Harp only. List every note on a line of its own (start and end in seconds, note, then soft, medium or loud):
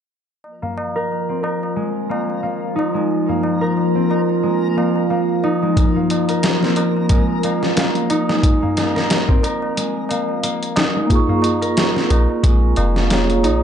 0.62 2.09 A#3 medium
0.96 1.43 A#4 medium
1.29 3.95 C4 medium
1.43 3.55 A#4 medium
1.76 2.93 G#3 medium
2.09 2.42 A#3 medium
2.43 3.28 A#3 medium
2.76 5.43 D#4 medium
2.94 4.42 G#3 medium
3.29 4.76 A#3 medium
3.61 4.09 A#4 medium
3.95 6.62 C4 medium
4.10 6.22 A#4 medium
4.43 5.61 G#3 medium
4.77 5.10 A#3 medium
5.10 5.96 A#3 medium
5.44 8.10 D#4 medium
5.62 5.82 G#3 medium
5.96 7.43 A#3 medium
6.29 6.76 A#4 medium
6.63 9.29 C4 medium
6.77 8.89 A#4 medium
7.10 8.28 G#3 medium
7.44 7.77 A#3 medium
7.77 8.62 A#3 medium
8.10 10.76 D#4 medium
8.29 9.76 G#3 medium
8.62 10.10 A#3 medium
8.96 9.43 A#4 medium
9.29 11.95 C4 medium
9.44 11.56 A#4 medium
9.77 10.95 G#3 medium
10.10 10.43 A#3 medium
10.43 11.29 A#3 medium
10.77 13.43 D#4 medium
10.96 11.15 G#3 medium
11.29 12.76 A#3 medium
11.62 12.09 A#4 medium
11.95 13.63 C4 medium
12.09 13.63 A#4 medium
12.43 13.61 G#3 medium
12.77 13.10 A#3 medium
13.10 13.63 A#3 medium
13.43 13.63 D#4 medium